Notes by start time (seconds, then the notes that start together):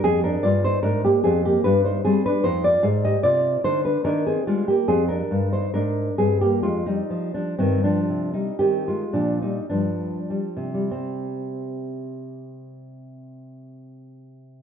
0.04 F2 C4 G#4
0.24 D4 A#4
0.43 G2 F4 D5
0.64 D#4 C5
0.83 G#2 D4 A#4
1.05 A#3 G4
1.24 F2 C4 G#4
1.45 A#3 G4
1.64 G2 D4 B4
1.85 D#4 C5
2.05 G3 C4 G#4
2.26 D4 B4
2.44 F2 D#4 C5
2.64 F4 D5
2.83 G#2 G#4 F5
3.05 G4 D#5
3.23 C3 F4 D5
3.64 D3 D#4 C5
3.85 D4 B4
4.04 D#3 D4 A#4
4.26 C4 G#4
4.47 G3 G#3 F4
4.68 A#3 G4
4.88 F2 C4 G#4
5.09 D4 A#4
5.31 G2
5.53 D#4 C5
5.74 G#2 D4 A#4
6.18 G2 C4 G#4
6.41 A#3 G4
6.63 F2 G#3 F4
6.86 G3 D#4
7.10 F3
7.34 F3 D4
7.59 G2 D#3 C4
7.84 F3 D4
8.09 C3
8.33 G3 D#4
8.59 D#3 C4 G4
8.88 G#3 F4
9.13 A#2 F3 D4
9.42 G3 D#4
9.70 G2 F3 D4
10.30 G3
10.57 C3
10.74 G3
10.91 C4